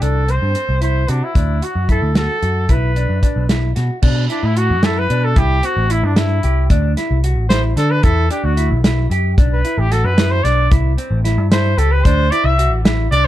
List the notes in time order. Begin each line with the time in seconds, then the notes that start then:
0.01 C2 D4 A4, closed hi-hat
0.28 C4 C5, closed hi-hat
0.42 G2
0.54 C4, closed hi-hat
0.69 C2
0.81 E4 C5, closed hi-hat
1.08 C3 D4 F#4, closed hi-hat
1.24 E4
1.35 D2 D4, kick, closed hi-hat
1.62 F#4, closed hi-hat
1.75 F#2
1.89 E4 A4, kick, closed hi-hat
2.02 D2
2.15 F#4 A4, snare, closed hi-hat
2.42 F#2 F#4, closed hi-hat
2.69 B1 E4 B4, kick, closed hi-hat
2.96 D4, closed hi-hat
3.09 F#2
3.22 D4, kick, closed hi-hat
3.36 B1
3.49 E4, snare, closed hi-hat
3.76 B2 F#4, snare, closed hi-hat
4.02 B2 D4, kick, crash
4.30 D4 E4, closed hi-hat
4.43 A2 E4
4.57 F#4, closed hi-hat
4.70 F#2
4.83 E4 A4, snare, closed hi-hat
4.98 B4
5.10 B2 D4, closed hi-hat
5.24 A4
5.36 C2 E4 G4, kick, closed hi-hat
5.63 C4 F#4, closed hi-hat
5.77 A1
5.90 E4, closed hi-hat
6.03 G2 D4
6.16 E4, snare, closed hi-hat
6.43 C2 G4, closed hi-hat
6.70 D2 D4, kick, closed hi-hat
6.97 E4, snare, closed hi-hat
7.11 C2
7.24 F#4, closed hi-hat
7.37 A1
7.49 E4 C5, snare, closed hi-hat
7.77 D3 D4 A4, snare, closed hi-hat
7.90 B4
8.03 E2 E4 A4, kick, closed hi-hat
8.30 D4 G4, closed hi-hat
8.44 D2 F#4
8.57 E4, closed hi-hat
8.70 B1
8.84 E4, snare, closed hi-hat
9.10 F#2 G4, closed hi-hat
9.38 B1 D4, kick, closed hi-hat
9.53 B4
9.65 E4, closed hi-hat
9.78 A1 G4
9.91 F#4 A4, snare, closed hi-hat
10.04 F#2 B4
10.17 E4, snare, closed hi-hat
10.31 C5
10.44 B1 D4 D5, snare, closed hi-hat
10.71 C2 E4, kick, closed hi-hat
10.98 C4, closed hi-hat
11.11 A1
11.24 E4, snare, closed hi-hat
11.38 G2
11.52 E4 C5, snare, closed hi-hat
11.78 C#2 G4 A4, closed hi-hat
11.92 B4
12.04 D2 D4 C5, kick, closed hi-hat
12.31 E4 D5, closed hi-hat
12.44 C2 E5
12.58 F#4, closed hi-hat
12.71 A1
12.85 E4, snare, closed hi-hat
13.11 C2 D4 D5, closed hi-hat